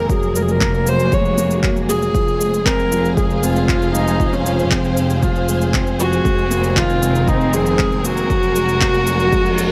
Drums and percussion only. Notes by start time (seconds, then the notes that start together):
0.10 kick, shaker
0.23 shaker
0.35 shaker
0.48 shaker
0.61 kick, clap, shaker
0.74 shaker
0.87 shaker
1.00 shaker
1.12 kick, shaker
1.25 shaker
1.38 shaker
1.51 shaker
1.63 kick, clap, shaker
1.76 shaker
1.89 shaker
2.02 shaker
2.15 kick, shaker
2.28 shaker
2.41 shaker
2.54 shaker
2.66 kick, clap, shaker
2.79 shaker
2.92 shaker
3.05 shaker
3.17 kick, shaker
3.30 shaker
3.43 shaker
3.56 shaker
3.69 kick, clap, shaker
3.82 shaker
3.95 shaker
4.08 shaker
4.20 kick, shaker
4.33 shaker
4.46 shaker
4.59 shaker
4.71 kick, clap, shaker
4.85 shaker
4.97 shaker
5.10 shaker
5.23 kick, shaker
5.36 shaker
5.48 shaker
5.61 shaker
5.74 kick, clap, shaker
5.87 shaker
6.00 shaker
6.13 shaker
6.25 kick, shaker
6.38 shaker
6.51 shaker
6.64 shaker
6.76 kick, clap, shaker
6.90 shaker
7.03 shaker
7.15 shaker
7.28 kick, shaker
7.41 shaker
7.53 shaker
7.66 shaker
7.79 kick, clap, shaker
7.92 shaker
8.05 shaker
8.17 shaker
8.30 kick, shaker
8.43 shaker
8.56 shaker
8.69 shaker
8.81 kick, clap, shaker
8.94 shaker
9.07 shaker
9.20 shaker
9.33 kick, shaker
9.46 shaker
9.58 shaker